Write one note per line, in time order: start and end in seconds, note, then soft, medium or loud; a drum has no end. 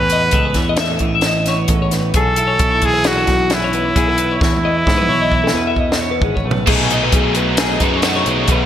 0.00 0.29 E2 medium
0.00 1.68 A2 medium
0.00 0.56 E3 medium
0.00 0.12 E4 medium
0.00 0.75 B4 loud
0.10 1.47 B3 medium
0.10 0.23 D#5 medium
0.10 closed hi-hat medium
0.23 0.32 B4 medium
0.31 0.54 C#2 medium
0.31 2.12 G#4 medium
0.31 0.45 A4 medium
0.31 kick loud
0.31 closed hi-hat medium
0.45 0.57 B4 medium
0.54 0.97 E2 medium
0.54 1.02 E3 medium
0.54 0.68 C#5 medium
0.54 kick medium
0.54 snare soft
0.54 closed hi-hat medium
0.69 0.80 D#5 medium
0.77 0.91 E5 medium
0.77 snare loud
0.77 closed hi-hat medium
0.91 1.03 A4 medium
0.99 1.65 A1 medium
0.99 2.14 E3 medium
0.99 kick medium
0.99 closed hi-hat medium
1.03 1.14 B4 medium
1.15 1.26 E5 medium
1.21 snare medium
1.21 closed hi-hat medium
1.26 1.48 D#5 medium
1.46 2.37 B3 medium
1.46 1.59 C#5 medium
1.46 snare soft
1.46 closed hi-hat medium
1.59 1.70 B4 medium
1.68 2.11 A1 medium
1.68 1.92 G#2 medium
1.68 1.81 A4 medium
1.68 kick loud
1.68 closed hi-hat medium
1.82 1.93 C#5 medium
1.91 2.16 A2 medium
1.91 2.15 B4 medium
1.91 snare soft
1.91 closed hi-hat medium
2.14 2.56 B1 medium
2.14 2.83 B2 medium
2.14 2.37 G#4 medium
2.14 2.87 A4 medium
2.14 kick loud
2.14 closed hi-hat medium
2.36 2.59 E4 medium
2.36 2.49 A4 medium
2.36 closed hi-hat medium
2.47 2.71 C#5 medium
2.59 2.81 B1 medium
2.59 4.39 E4 medium
2.59 kick loud
2.59 closed hi-hat medium
2.71 2.83 E5 medium
2.82 3.24 B1 medium
2.82 5.08 E3 medium
2.82 3.08 G#4 loud
2.82 2.94 A4 medium
2.82 kick medium
2.82 closed hi-hat medium
2.94 3.05 B4 medium
3.04 3.56 F#4 loud
3.04 3.17 G#4 medium
3.04 snare loud
3.04 closed hi-hat medium
3.17 3.29 A4 medium
3.27 3.92 B1 medium
3.27 3.96 F#2 medium
3.27 3.52 F#4 medium
3.27 kick medium
3.27 snare soft
3.27 closed hi-hat medium
3.50 3.63 G#4 medium
3.50 snare medium
3.50 closed hi-hat medium
3.54 4.42 E4 medium
3.64 3.74 C#5 medium
3.73 4.18 B3 medium
3.73 3.85 B4 medium
3.73 closed hi-hat soft
3.85 3.96 C#5 medium
3.95 4.38 B1 medium
3.95 4.41 B2 medium
3.95 4.08 G#4 medium
3.95 kick loud
3.95 closed hi-hat medium
4.08 4.19 A4 medium
4.18 4.65 B3 medium
4.18 4.31 B4 medium
4.18 closed hi-hat medium
4.31 4.53 C#5 medium
4.41 4.83 E2 medium
4.41 6.23 E2 medium
4.41 6.19 E4 medium
4.41 kick loud
4.41 snare medium
4.56 high tom soft
4.65 4.87 B3 medium
4.65 4.76 D#5 medium
4.76 4.87 B4 medium
4.87 5.07 G#2 medium
4.87 6.00 B3 medium
4.87 4.97 A4 medium
4.87 kick loud
4.87 snare medium
4.98 5.08 B4 medium
5.02 mid tom medium
5.09 5.51 B1 medium
5.09 6.68 E3 medium
5.09 5.20 C#5 medium
5.21 5.33 D#5 medium
5.32 5.44 E5 medium
5.32 kick medium
5.44 5.55 A4 medium
5.44 snare medium
5.54 6.18 E2 medium
5.54 6.68 B2 medium
5.54 5.66 B4 medium
5.67 5.78 E5 medium
5.76 6.01 D#5 medium
5.76 kick medium
5.92 snare medium
6.01 6.92 B3 medium
6.01 6.12 C#5 medium
6.11 6.24 B4 medium
6.21 6.42 G#1 medium
6.21 6.45 G#2 medium
6.21 6.34 G#4 medium
6.21 kick loud
6.36 6.47 C#5 medium
6.36 kick medium
6.44 6.65 B1 medium
6.44 6.68 A2 medium
6.44 6.69 B4 medium
6.51 floor tom medium
6.67 7.09 B1 medium
6.67 7.79 B2 medium
6.67 7.82 B2 medium
6.67 7.80 F#3 medium
6.67 7.80 A3 medium
6.67 7.79 D#4 medium
6.67 6.91 G#4 medium
6.67 kick loud
6.67 crash loud
6.90 7.36 D#4 medium
6.90 7.02 D#5 medium
6.90 closed hi-hat medium
7.03 7.14 B4 medium
7.12 7.76 B1 medium
7.12 7.36 G#4 medium
7.12 kick loud
7.12 closed hi-hat medium
7.35 8.66 F#3 medium
7.35 7.81 D#4 soft
7.35 7.58 B4 medium
7.35 closed hi-hat medium
7.57 7.70 G#4 medium
7.57 8.66 G#4 medium
7.57 snare loud
7.57 closed hi-hat loud
7.71 7.81 D#5 medium
7.80 8.22 F#2 medium
7.80 8.49 F#2 medium
7.80 8.01 B2 medium
7.80 8.02 F#3 medium
7.80 8.02 A3 medium
7.80 8.02 D#4 medium
7.80 8.66 D#4 medium
7.80 7.94 B4 medium
7.80 kick medium
7.80 closed hi-hat medium
7.94 8.04 C#5 medium
8.02 8.66 B2 medium
8.02 8.66 F#3 medium
8.02 8.66 A3 medium
8.02 8.66 D#4 medium
8.02 8.15 F#4 medium
8.02 snare loud
8.02 closed hi-hat medium
8.16 8.27 C#5 medium
8.26 8.47 B1 medium
8.26 8.66 G#3 medium
8.26 8.40 B4 medium
8.26 closed hi-hat medium
8.40 8.50 C#5 medium
8.48 8.66 B1 loud
8.48 8.66 B2 medium
8.48 kick loud
8.48 closed hi-hat loud
8.52 8.66 B4 medium